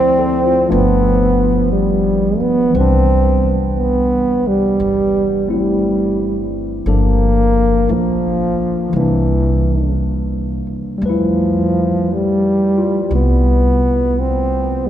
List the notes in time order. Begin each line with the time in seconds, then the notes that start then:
Already playing: D2 F3 A3 C4 E4 C5 D5
0.19 A4
0.45 F4
0.69 G1 F3 A3 B3 D4
1.72 G3
2.40 B3, muted upright bass stroke
2.69 E3 G3
2.75 C2 C4 B4
2.80 D4
3.77 B3
4.45 G3, muted upright bass stroke
4.80 G1
5.48 G3 A3 C4 E4
6.86 G1 F3 A#3 D4 A4
6.91 A#3
7.89 A#1 E3 F3
8.89 C2 E3
8.93 E3 G3 A#3
9.00 D4
10.67 muted upright bass stroke
10.98 F2 G3
11.02 A3 B4
11.09 F3 E4
12.13 G3
12.78 F4
13.11 C2
13.15 B3
14.20 C4